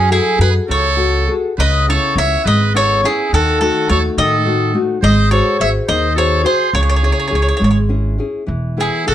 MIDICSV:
0, 0, Header, 1, 5, 480
1, 0, Start_track
1, 0, Key_signature, 4, "minor"
1, 0, Tempo, 587659
1, 1283, Time_signature, 6, 3, 24, 8
1, 2240, Tempo, 570342
1, 5600, Tempo, 582524
1, 7588, End_track
2, 0, Start_track
2, 0, Title_t, "Mandolin"
2, 0, Program_c, 0, 25
2, 99, Note_on_c, 0, 68, 75
2, 311, Note_off_c, 0, 68, 0
2, 336, Note_on_c, 0, 71, 77
2, 398, Note_off_c, 0, 71, 0
2, 583, Note_on_c, 0, 73, 76
2, 1082, Note_off_c, 0, 73, 0
2, 1307, Note_on_c, 0, 75, 85
2, 1522, Note_off_c, 0, 75, 0
2, 1551, Note_on_c, 0, 73, 73
2, 1762, Note_off_c, 0, 73, 0
2, 1783, Note_on_c, 0, 76, 83
2, 1996, Note_off_c, 0, 76, 0
2, 2019, Note_on_c, 0, 75, 80
2, 2233, Note_off_c, 0, 75, 0
2, 2259, Note_on_c, 0, 73, 88
2, 2499, Note_off_c, 0, 73, 0
2, 2502, Note_on_c, 0, 68, 74
2, 2717, Note_off_c, 0, 68, 0
2, 2744, Note_on_c, 0, 69, 83
2, 2960, Note_off_c, 0, 69, 0
2, 2969, Note_on_c, 0, 69, 71
2, 3190, Note_off_c, 0, 69, 0
2, 3210, Note_on_c, 0, 73, 66
2, 3274, Note_off_c, 0, 73, 0
2, 3453, Note_on_c, 0, 75, 84
2, 3953, Note_off_c, 0, 75, 0
2, 4172, Note_on_c, 0, 75, 82
2, 4391, Note_off_c, 0, 75, 0
2, 4402, Note_on_c, 0, 73, 69
2, 4647, Note_off_c, 0, 73, 0
2, 4653, Note_on_c, 0, 76, 78
2, 4716, Note_off_c, 0, 76, 0
2, 4885, Note_on_c, 0, 75, 78
2, 5107, Note_off_c, 0, 75, 0
2, 5133, Note_on_c, 0, 73, 72
2, 5350, Note_off_c, 0, 73, 0
2, 5368, Note_on_c, 0, 72, 71
2, 5587, Note_off_c, 0, 72, 0
2, 5610, Note_on_c, 0, 73, 75
2, 5661, Note_off_c, 0, 73, 0
2, 5676, Note_on_c, 0, 73, 48
2, 5722, Note_off_c, 0, 73, 0
2, 5732, Note_on_c, 0, 73, 63
2, 5779, Note_off_c, 0, 73, 0
2, 5789, Note_on_c, 0, 73, 48
2, 5842, Note_off_c, 0, 73, 0
2, 5853, Note_on_c, 0, 73, 42
2, 5904, Note_off_c, 0, 73, 0
2, 5920, Note_on_c, 0, 73, 45
2, 5969, Note_off_c, 0, 73, 0
2, 5980, Note_on_c, 0, 73, 45
2, 6029, Note_off_c, 0, 73, 0
2, 6046, Note_on_c, 0, 73, 39
2, 6092, Note_off_c, 0, 73, 0
2, 6108, Note_on_c, 0, 73, 47
2, 6154, Note_off_c, 0, 73, 0
2, 6167, Note_on_c, 0, 73, 39
2, 6208, Note_off_c, 0, 73, 0
2, 6218, Note_on_c, 0, 73, 50
2, 6270, Note_off_c, 0, 73, 0
2, 6287, Note_on_c, 0, 73, 49
2, 6335, Note_off_c, 0, 73, 0
2, 6348, Note_on_c, 0, 73, 51
2, 6390, Note_off_c, 0, 73, 0
2, 6400, Note_on_c, 0, 73, 47
2, 6453, Note_off_c, 0, 73, 0
2, 7306, Note_on_c, 0, 68, 63
2, 7517, Note_off_c, 0, 68, 0
2, 7530, Note_on_c, 0, 69, 76
2, 7588, Note_off_c, 0, 69, 0
2, 7588, End_track
3, 0, Start_track
3, 0, Title_t, "Muted trumpet"
3, 0, Program_c, 1, 59
3, 93, Note_on_c, 1, 64, 81
3, 308, Note_off_c, 1, 64, 0
3, 334, Note_on_c, 1, 68, 78
3, 438, Note_off_c, 1, 68, 0
3, 565, Note_on_c, 1, 69, 88
3, 1073, Note_off_c, 1, 69, 0
3, 1293, Note_on_c, 1, 71, 83
3, 1515, Note_off_c, 1, 71, 0
3, 1543, Note_on_c, 1, 69, 77
3, 1758, Note_off_c, 1, 69, 0
3, 1776, Note_on_c, 1, 73, 73
3, 1991, Note_off_c, 1, 73, 0
3, 1998, Note_on_c, 1, 71, 76
3, 2221, Note_off_c, 1, 71, 0
3, 2243, Note_on_c, 1, 69, 79
3, 2467, Note_off_c, 1, 69, 0
3, 2487, Note_on_c, 1, 64, 60
3, 2709, Note_off_c, 1, 64, 0
3, 2736, Note_on_c, 1, 66, 76
3, 2956, Note_off_c, 1, 66, 0
3, 2975, Note_on_c, 1, 66, 62
3, 3194, Note_off_c, 1, 66, 0
3, 3217, Note_on_c, 1, 69, 70
3, 3322, Note_off_c, 1, 69, 0
3, 3452, Note_on_c, 1, 69, 74
3, 3953, Note_off_c, 1, 69, 0
3, 4155, Note_on_c, 1, 72, 82
3, 4382, Note_off_c, 1, 72, 0
3, 4406, Note_on_c, 1, 69, 71
3, 4626, Note_off_c, 1, 69, 0
3, 4639, Note_on_c, 1, 73, 73
3, 4747, Note_off_c, 1, 73, 0
3, 4879, Note_on_c, 1, 72, 69
3, 5104, Note_off_c, 1, 72, 0
3, 5108, Note_on_c, 1, 69, 74
3, 5337, Note_off_c, 1, 69, 0
3, 5349, Note_on_c, 1, 68, 69
3, 5577, Note_off_c, 1, 68, 0
3, 5597, Note_on_c, 1, 68, 62
3, 6522, Note_off_c, 1, 68, 0
3, 7292, Note_on_c, 1, 64, 64
3, 7510, Note_off_c, 1, 64, 0
3, 7532, Note_on_c, 1, 66, 77
3, 7588, Note_off_c, 1, 66, 0
3, 7588, End_track
4, 0, Start_track
4, 0, Title_t, "Nylon-string guitar"
4, 0, Program_c, 2, 24
4, 0, Note_on_c, 2, 54, 56
4, 81, Note_on_c, 2, 66, 47
4, 87, Note_on_c, 2, 68, 37
4, 91, Note_on_c, 2, 69, 54
4, 306, Note_off_c, 2, 54, 0
4, 308, Note_off_c, 2, 66, 0
4, 310, Note_off_c, 2, 68, 0
4, 317, Note_on_c, 2, 66, 40
4, 318, Note_off_c, 2, 69, 0
4, 322, Note_on_c, 2, 68, 35
4, 327, Note_on_c, 2, 69, 46
4, 556, Note_on_c, 2, 49, 64
4, 704, Note_off_c, 2, 66, 0
4, 705, Note_off_c, 2, 68, 0
4, 709, Note_off_c, 2, 69, 0
4, 790, Note_on_c, 2, 66, 48
4, 798, Note_on_c, 2, 69, 50
4, 1026, Note_off_c, 2, 49, 0
4, 1029, Note_off_c, 2, 66, 0
4, 1039, Note_off_c, 2, 69, 0
4, 1039, Note_on_c, 2, 66, 45
4, 1048, Note_on_c, 2, 68, 43
4, 1051, Note_on_c, 2, 69, 47
4, 1233, Note_off_c, 2, 66, 0
4, 1239, Note_off_c, 2, 68, 0
4, 1239, Note_off_c, 2, 69, 0
4, 1289, Note_on_c, 2, 49, 60
4, 1531, Note_on_c, 2, 59, 46
4, 1537, Note_on_c, 2, 61, 41
4, 1541, Note_on_c, 2, 64, 47
4, 1754, Note_off_c, 2, 49, 0
4, 1755, Note_off_c, 2, 59, 0
4, 1757, Note_off_c, 2, 61, 0
4, 1760, Note_off_c, 2, 64, 0
4, 1766, Note_on_c, 2, 59, 43
4, 1766, Note_on_c, 2, 61, 40
4, 1770, Note_on_c, 2, 64, 47
4, 2006, Note_on_c, 2, 56, 60
4, 2145, Note_off_c, 2, 59, 0
4, 2147, Note_off_c, 2, 61, 0
4, 2148, Note_off_c, 2, 64, 0
4, 2240, Note_on_c, 2, 59, 48
4, 2241, Note_on_c, 2, 61, 41
4, 2248, Note_on_c, 2, 64, 48
4, 2470, Note_off_c, 2, 56, 0
4, 2475, Note_off_c, 2, 59, 0
4, 2479, Note_off_c, 2, 61, 0
4, 2485, Note_off_c, 2, 64, 0
4, 2485, Note_on_c, 2, 59, 51
4, 2489, Note_on_c, 2, 61, 45
4, 2495, Note_on_c, 2, 64, 51
4, 2677, Note_off_c, 2, 59, 0
4, 2679, Note_off_c, 2, 61, 0
4, 2683, Note_off_c, 2, 64, 0
4, 2734, Note_on_c, 2, 51, 60
4, 2965, Note_on_c, 2, 57, 42
4, 2969, Note_on_c, 2, 63, 40
4, 2974, Note_on_c, 2, 66, 45
4, 3196, Note_off_c, 2, 51, 0
4, 3199, Note_off_c, 2, 57, 0
4, 3201, Note_off_c, 2, 66, 0
4, 3203, Note_off_c, 2, 63, 0
4, 3208, Note_on_c, 2, 57, 42
4, 3212, Note_on_c, 2, 66, 43
4, 3213, Note_on_c, 2, 63, 36
4, 3447, Note_on_c, 2, 51, 65
4, 3591, Note_off_c, 2, 57, 0
4, 3592, Note_off_c, 2, 66, 0
4, 3593, Note_off_c, 2, 63, 0
4, 3681, Note_on_c, 2, 57, 52
4, 3683, Note_on_c, 2, 63, 50
4, 3690, Note_on_c, 2, 66, 59
4, 3910, Note_off_c, 2, 51, 0
4, 3912, Note_off_c, 2, 57, 0
4, 3912, Note_off_c, 2, 63, 0
4, 3920, Note_off_c, 2, 66, 0
4, 3921, Note_on_c, 2, 57, 48
4, 3924, Note_on_c, 2, 63, 42
4, 3930, Note_on_c, 2, 66, 51
4, 4113, Note_off_c, 2, 57, 0
4, 4113, Note_off_c, 2, 63, 0
4, 4117, Note_off_c, 2, 66, 0
4, 4159, Note_on_c, 2, 56, 75
4, 4398, Note_on_c, 2, 66, 46
4, 4399, Note_on_c, 2, 68, 47
4, 4404, Note_on_c, 2, 72, 49
4, 4624, Note_off_c, 2, 56, 0
4, 4635, Note_off_c, 2, 66, 0
4, 4639, Note_off_c, 2, 68, 0
4, 4645, Note_on_c, 2, 66, 43
4, 4646, Note_off_c, 2, 72, 0
4, 4649, Note_on_c, 2, 68, 35
4, 4656, Note_on_c, 2, 72, 44
4, 4882, Note_on_c, 2, 51, 72
4, 5027, Note_off_c, 2, 66, 0
4, 5029, Note_off_c, 2, 68, 0
4, 5034, Note_off_c, 2, 72, 0
4, 5116, Note_on_c, 2, 66, 46
4, 5123, Note_on_c, 2, 68, 47
4, 5124, Note_on_c, 2, 72, 54
4, 5339, Note_off_c, 2, 66, 0
4, 5344, Note_off_c, 2, 68, 0
4, 5345, Note_off_c, 2, 72, 0
4, 5347, Note_off_c, 2, 51, 0
4, 5349, Note_on_c, 2, 66, 52
4, 5354, Note_on_c, 2, 68, 38
4, 5356, Note_on_c, 2, 72, 57
4, 5545, Note_off_c, 2, 66, 0
4, 5548, Note_off_c, 2, 68, 0
4, 5549, Note_off_c, 2, 72, 0
4, 5602, Note_on_c, 2, 49, 64
4, 5836, Note_on_c, 2, 61, 52
4, 5842, Note_on_c, 2, 64, 40
4, 5847, Note_on_c, 2, 68, 47
4, 6054, Note_off_c, 2, 61, 0
4, 6060, Note_off_c, 2, 64, 0
4, 6062, Note_off_c, 2, 49, 0
4, 6062, Note_off_c, 2, 68, 0
4, 6063, Note_on_c, 2, 61, 36
4, 6069, Note_on_c, 2, 64, 41
4, 6074, Note_on_c, 2, 68, 46
4, 6308, Note_on_c, 2, 56, 60
4, 6453, Note_off_c, 2, 61, 0
4, 6457, Note_off_c, 2, 64, 0
4, 6458, Note_off_c, 2, 68, 0
4, 6548, Note_on_c, 2, 61, 43
4, 6553, Note_on_c, 2, 64, 44
4, 6558, Note_on_c, 2, 68, 49
4, 6779, Note_off_c, 2, 56, 0
4, 6784, Note_off_c, 2, 61, 0
4, 6792, Note_off_c, 2, 64, 0
4, 6794, Note_off_c, 2, 68, 0
4, 6794, Note_on_c, 2, 61, 45
4, 6802, Note_on_c, 2, 64, 40
4, 6805, Note_on_c, 2, 68, 53
4, 6988, Note_off_c, 2, 61, 0
4, 6993, Note_off_c, 2, 64, 0
4, 6994, Note_off_c, 2, 68, 0
4, 7026, Note_on_c, 2, 52, 51
4, 7280, Note_on_c, 2, 59, 48
4, 7280, Note_on_c, 2, 64, 39
4, 7285, Note_on_c, 2, 68, 48
4, 7500, Note_off_c, 2, 52, 0
4, 7505, Note_off_c, 2, 59, 0
4, 7509, Note_off_c, 2, 64, 0
4, 7511, Note_off_c, 2, 68, 0
4, 7515, Note_on_c, 2, 59, 33
4, 7518, Note_on_c, 2, 64, 39
4, 7524, Note_on_c, 2, 68, 44
4, 7588, Note_off_c, 2, 59, 0
4, 7588, Note_off_c, 2, 64, 0
4, 7588, Note_off_c, 2, 68, 0
4, 7588, End_track
5, 0, Start_track
5, 0, Title_t, "Upright bass"
5, 0, Program_c, 3, 32
5, 0, Note_on_c, 3, 42, 91
5, 152, Note_off_c, 3, 42, 0
5, 317, Note_on_c, 3, 42, 83
5, 473, Note_off_c, 3, 42, 0
5, 565, Note_on_c, 3, 37, 77
5, 1035, Note_off_c, 3, 37, 0
5, 1291, Note_on_c, 3, 37, 76
5, 1602, Note_off_c, 3, 37, 0
5, 1761, Note_on_c, 3, 37, 86
5, 1916, Note_off_c, 3, 37, 0
5, 2005, Note_on_c, 3, 32, 84
5, 2470, Note_off_c, 3, 32, 0
5, 2731, Note_on_c, 3, 39, 78
5, 3042, Note_off_c, 3, 39, 0
5, 3213, Note_on_c, 3, 39, 77
5, 3366, Note_off_c, 3, 39, 0
5, 3446, Note_on_c, 3, 45, 85
5, 3912, Note_off_c, 3, 45, 0
5, 4164, Note_on_c, 3, 32, 92
5, 4474, Note_off_c, 3, 32, 0
5, 4647, Note_on_c, 3, 32, 84
5, 4800, Note_off_c, 3, 32, 0
5, 4885, Note_on_c, 3, 39, 90
5, 5352, Note_off_c, 3, 39, 0
5, 5599, Note_on_c, 3, 37, 88
5, 5909, Note_off_c, 3, 37, 0
5, 6086, Note_on_c, 3, 37, 69
5, 6238, Note_off_c, 3, 37, 0
5, 6326, Note_on_c, 3, 32, 77
5, 6793, Note_off_c, 3, 32, 0
5, 7040, Note_on_c, 3, 28, 78
5, 7353, Note_off_c, 3, 28, 0
5, 7532, Note_on_c, 3, 35, 76
5, 7588, Note_off_c, 3, 35, 0
5, 7588, End_track
0, 0, End_of_file